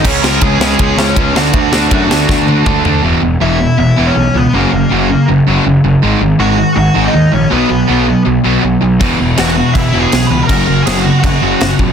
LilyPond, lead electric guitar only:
\new Staff \with { instrumentName = "Lead electric guitar" } { \time 4/4 \key e \lydian \tempo 4 = 161 <cis' cis''>8 <ais' ais''>8 <gis' gis''>4 <gis' gis''>8 <cis' cis''>4 <fis' fis''>8~ | <fis' fis''>2. r4 | r4 <e' e''>4 <e' e''>8. <cis' cis''>8. <b b'>8 | <ais ais'>2 r2 |
r4 <fis' fis''>4 <fis' fis''>8. <dis' dis''>8. <cis' cis''>8 | <b b'>2 r2 | r4 <fis' fis''>4 <e' e''>8. <gis' gis''>8. <b' b''>8 | <ais' ais''>4 <gis' gis''>8 <fis' fis''>8 <fis' fis''>4. r8 | }